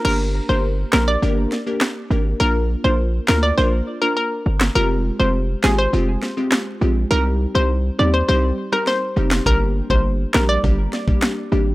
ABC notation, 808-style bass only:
X:1
M:4/4
L:1/16
Q:1/4=102
K:Gphr
V:1 name="808-style bass" clef=bass
G,,,3 G,,,3 B,,,2 G,,,2 z4 A,,,2 | B,,,3 B,,,3 D,,2 B,,,2 z4 G,,,2 | F,,,3 F,,,3 A,,,2 F,,,2 z4 B,,,2 | C,,3 C,,3 E,,2 C,,2 z4 F,,,2 |
G,,,3 G,,,3 B,,,2 G,,,2 z4 A,,,2 |]